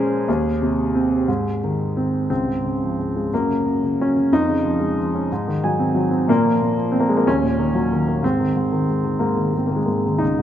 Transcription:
0.00 0.24 A#2 medium
0.00 0.29 F3 medium
0.00 0.26 G#3 soft
0.00 0.30 C#4 medium
0.00 1.58 G#4 medium
0.00 0.30 A#4 medium
0.00 0.29 C5 medium
0.28 1.25 D#2 medium
0.62 1.27 C3 soft
0.95 1.27 C4 soft
1.28 2.27 G#2 medium
1.64 2.29 D#3 soft
1.97 2.29 C4 soft
2.30 3.29 C#2 soft
2.30 3.35 C4 medium
2.47 3.29 G#2 soft
2.65 2.98 C#3 soft
2.82 3.31 F3 soft
2.99 3.31 C#3 soft
3.16 3.32 G#3 soft
3.33 3.64 F#2 soft
3.33 4.01 A#3 medium
3.49 3.81 C#3 soft
3.66 3.99 F#2 soft
3.83 4.15 C#3 soft
4.00 4.31 F#2 soft
4.00 4.34 C#4 medium
4.16 4.31 C#3 soft
4.32 5.28 F2 soft
4.32 5.94 D#4 medium
4.49 5.29 C#3 soft
4.64 4.96 F3 soft
4.80 5.29 G#3 soft
4.98 5.30 F3 soft
5.15 5.31 C#4 soft
5.32 6.28 G#2 medium
5.48 6.28 D#3 soft
5.64 5.93 F#3 soft
5.64 6.26 G#5 soft
5.79 6.10 C4 soft
5.95 6.28 F#3 soft
6.11 6.28 C4 soft
6.28 6.60 A#2 medium
6.28 6.93 A#3 medium
6.45 6.75 F3 soft
6.62 6.92 A#2 soft
6.77 7.10 F3 soft
6.92 7.25 A#2 soft
6.92 7.01 C4 medium
7.00 7.09 A#3 medium
7.09 7.27 F3 soft
7.09 7.18 G#3 medium
7.17 7.26 A#3 medium
7.27 8.21 D#2 soft
7.27 8.27 C#4 medium
7.43 8.21 A#2 soft
7.59 7.91 D#3 soft
7.74 8.22 F#3 soft
7.92 8.23 D#3 soft
8.08 8.23 A#3 soft
8.23 8.55 G#2 soft
8.23 8.85 C4 medium
8.39 8.70 D#3 soft
8.56 8.87 G#2 soft
8.72 9.03 D#3 soft
8.89 9.19 G#2 soft
9.04 9.35 D#3 soft
9.19 9.51 G#2 soft
9.19 9.56 A#3 medium
9.36 9.70 D#3 soft
9.53 9.86 G#2 soft
9.57 9.68 C4 soft
9.67 9.77 A#3 soft
9.71 10.05 D#3 soft
9.76 9.86 G#3 soft
9.85 10.21 G#2 soft
9.85 9.96 A#3 soft
10.06 10.22 D#3 soft
10.18 10.42 C#2 soft
10.18 10.42 D#4 medium
10.38 10.42 G#2 soft

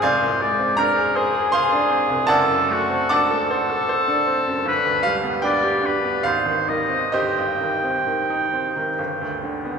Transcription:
0.02 2.25 F1 medium
0.02 0.43 C5 medium
0.02 0.74 D5 medium
0.02 0.74 F5 medium
0.02 0.78 G#5 loud
0.22 0.52 C2 medium
0.41 0.71 G#3 medium
0.41 0.80 D5 medium
0.59 0.89 C4 medium
0.77 1.08 D4 medium
0.77 1.17 A#4 medium
0.77 1.53 A#5 loud
0.96 1.27 G#4 medium
1.16 2.32 G#4 medium
1.16 1.46 C5 medium
1.35 1.65 G#4 medium
1.52 1.83 C5 medium
1.52 2.25 F5 medium
1.52 2.25 G#5 medium
1.52 2.28 C6 loud
1.72 2.02 D4 medium
1.90 2.21 C4 medium
2.09 2.29 C2 medium
2.27 4.63 F#1 medium
2.27 2.73 A4 medium
2.27 3.07 D5 medium
2.27 3.07 F#5 medium
2.27 3.09 A5 loud
2.48 2.82 F#2 medium
2.68 3.03 A3 medium
2.68 3.15 F#4 medium
2.90 3.23 C4 medium
3.09 3.43 D4 medium
3.09 4.24 F#5 medium
3.09 4.24 A5 medium
3.09 4.28 D6 loud
3.14 4.68 A4 medium
3.31 3.62 A4 medium
3.51 3.82 C5 medium
3.70 4.01 A4 medium
3.89 4.21 C5 medium
4.08 4.40 D4 medium
4.27 4.59 C4 medium
4.47 4.67 F#2 medium
4.65 6.21 G1 medium
4.65 5.17 B4 medium
4.85 5.17 D2 medium
5.03 5.36 G3 medium
5.03 5.43 F5 loud
5.24 5.56 B3 medium
5.42 5.76 D4 medium
5.42 6.21 B4 medium
5.42 6.21 D5 medium
5.42 5.87 D5 medium
5.42 6.25 G5 medium
5.63 5.96 G4 medium
5.83 6.17 D4 medium
5.83 6.27 B4 medium
6.04 6.25 B3 medium
6.23 7.10 G#1 medium
6.23 6.70 C5 medium
6.23 7.13 F5 medium
6.46 6.82 D#2 medium
6.69 7.05 D#3 medium
6.69 7.13 D#5 medium
6.90 7.13 C4 medium
7.12 8.94 G1 medium
7.12 8.94 G4 medium
7.12 8.94 C5 medium
7.12 8.97 D#5 medium
7.12 9.39 G5 medium
7.37 7.74 G2 soft
7.60 7.97 D#3 soft
7.84 8.21 C4 soft
8.07 8.44 D#3 soft
8.30 8.67 D#4 medium
8.53 8.89 C4 medium
8.76 8.98 D#3 soft
8.99 9.79 G1 medium
9.21 9.57 D2 soft
9.43 9.77 D3 soft
9.65 9.79 B3 soft

